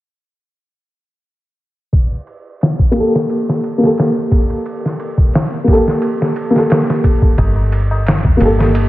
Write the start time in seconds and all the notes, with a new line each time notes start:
1.93 kick, ride
2.27 ride
2.61 snare, ride
2.79 kick
2.91 A#3, ride
2.96 G4
3.00 A4
3.15 snare
3.30 ride
3.49 snare
3.64 ride
3.78 A#3
3.82 G4 A4, snare
3.98 snare, ride
4.32 kick, ride
4.50 ride
4.66 ride
4.86 snare
5.00 ride
5.18 kick
5.34 snare, open hi-hat
5.64 A#3, kick, ride
5.69 G4 A4
5.88 snare
6.02 ride
6.22 snare
6.36 ride
6.50 A#3
6.55 G4 A4, snare
6.70 snare, ride
6.90 snare
7.04 kick, ride
7.22 kick
7.38 G1, kick, ride, tabla na
7.56 tabla na
7.72 ride
7.91 tabla na
8.06 snare, ride, tabla na
8.24 kick, tabla na, tabla ge
8.37 A#3, ride
8.41 G1 G4
8.45 A4
8.59 snare, tabla na
8.74 ride, tabla na